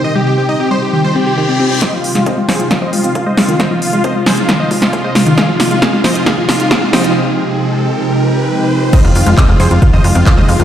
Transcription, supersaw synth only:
\new Staff \with { instrumentName = "Supersaw synth" } { \time 4/4 \key f \minor \tempo 4 = 135 ees''16 g'16 g'16 g'16 ees''16 g'16 c''16 g'16 g'16 c''16 g'16 g'16 g'16 g'16 g'16 g'16 | <c'' ees''>16 f'16 f'16 f'16 <c'' ees''>16 f'16 <aes' c''>16 f'16 f'16 <c'' ees''>16 f'16 f'16 f'16 <c'' ees''>16 f'16 f'16 | <c'' ees''>16 f'16 f'16 f'16 <c'' ees''>16 f'16 <aes' c''>16 f'16 f'16 <c'' ees''>16 f'16 f'16 f'16 <c'' ees''>16 f'16 f'16 | <aes' f''>16 f'16 f'16 f'16 <aes' f''>16 f'16 <c'' ees''>16 f'16 <aes' f''>16 f'16 f'16 f'16 <aes' f''>16 f'16 <c'' ees''>16 f'16 |
r1 | <c'' ees''>16 f'16 f'16 f'16 <c'' ees''>16 f'16 <aes' c''>16 f'16 f'16 <c'' ees''>16 f'16 f'16 f'16 <c'' ees''>16 f'16 f'16 | }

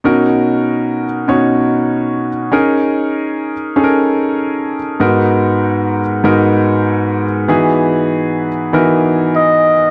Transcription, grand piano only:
\new Staff \with { instrumentName = "Grand piano" } { \time 4/4 \key b \major \tempo 4 = 97 <b, cis' dis' fis' ais'>4. r8 <b, cis' dis' fis' cis''>4. r8 | <cis' dis' gis' ais'>4. r8 <cis' dis' gis' a' ais'>4. r8 | <gis, b dis' fis' ais'>4. r8 <gis, b dis' fis' ais'>4. r8 | <e b dis' fis' gis'>4. r8 <e b dis' fis' ais'>4. r8 | }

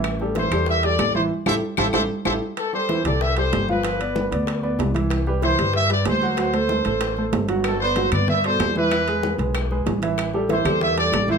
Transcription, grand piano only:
\new Staff \with { instrumentName = "Grand piano" } { \time 4/4 \key a \minor \tempo 4 = 189 <e e' e''>8 <g g' a'>8 <e e' e''>8 <g g' a'>4 <g g' a'>4 <e e' e''>8 | r8 <e' g' a'>8 r8 <e' g' a'>8 <e' g' a'>8 r8 <e' g' a'>8 r8 | r8 <g g' a'>8 <e e' e''>8 <g g' a'>4 <g g' a'>4 <f f' f''>8 | <f f' f''>8 <b b' d''>4 <b b' d''>4 <b b' d''>4 <e e' e''>8~ |
<e e' e''>8 <g g' b'>8 <e e' e''>8 <g g' b'>4 <g g' b'>4 <fis fis' fis''>8 | <fis fis' fis''>8 <a a' c''>4 <a a' c''>4 <a a' c''>4 <fis fis' fis''>8~ | <fis fis' fis''>8 <b b' d''>8 <fis fis' fis''>8 <b b' d''>4 <b, a' d''>4 <e e' e''>8 | <e e' e''>8 <gis gis' b'>4 <gis gis' b'>4 <gis gis' b'>4 <e e' e''>8~ |
<e e' e''>8 <g g' a'>8 <e e' e''>8 <g g' a'>4 <g g' a'>4 <e e' e''>8 | }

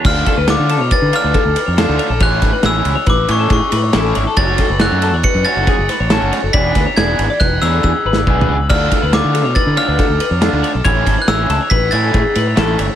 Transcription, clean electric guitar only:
\new Staff \with { instrumentName = "Clean electric guitar" } { \time 5/4 \key a \major \tempo 4 = 139 d''8 a'16 b'16 cis''8 a'16 cis''16 b'8 cis''16 b'16 a'8 b'16 cis''16 a'8 cis''16 a'16 | cis''8 a'16 b'16 cis''8 a'16 cis''16 b'8 cis''16 a'16 gis'8 b'16 cis''16 a'8 cis''16 a'16 | cis''8 a'16 b'16 cis''8 a'16 cis''16 b'8 cis''16 a'16 gis'8 b'16 cis''16 a'8 cis''16 a'16 | d''8 b'16 cis''16 d''8 b'16 d''16 b'8 cis''16 a'16 gis'8 b'16 d''16 b'8 d''16 b'16 |
d''8 a'16 b'16 cis''8 a'16 cis''16 b'8 cis''16 b'16 a'8 b'16 cis''16 a'8 cis''16 a'16 | cis''8 a'16 b'16 cis''8 a'16 cis''16 b'8 cis''16 a'16 gis'8 b'16 cis''16 a'8 cis''16 a'16 | }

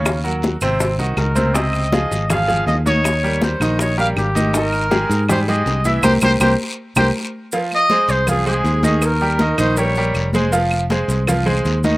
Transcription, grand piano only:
\new Staff \with { instrumentName = "Grand piano" } { \time 4/4 \key f \minor \tempo 4 = 160 <des des' des''>8 <ges ges' bes'>4 <c c' c''>4 <ees ees' ges'>4 <c c' c''>8 | <c c' c''>4 <f f' aes'>4 <f f' aes'>8 <f f' aes'>4 <ees ees' ees''>8~ | <ees ees' ees''>8 <g g' bes'>4 <ees ees' ees''>4 <g g' bes'>4 <ees ees' ees''>8 | <ees ees' ees''>4 <aes g' aes'>4 <g g' aes'>8 <aes g' aes'>4 <e e' e''>8 |
<g' bes' c''>8 <g' bes' c''>8 <g' bes' c''>8 r4 <g' bes' c''>8 r4 | <f f' f''>4 <aes aes' c''>4 <f f' f''>8 <aes aes' c''>4 <ees ees' ees''>8~ | <ees ees' ees''>8 <g g' bes'>8 <ees ees' ees''>8 <ees ees' ees''>8 <g g' bes'>8 <g g' bes'>4 <aes aes' c''>8 | <f f' f''>4 <aes aes' c''>4 <f f' f''>8 <aes aes' c''>4 <ees ees' ees''>8 | }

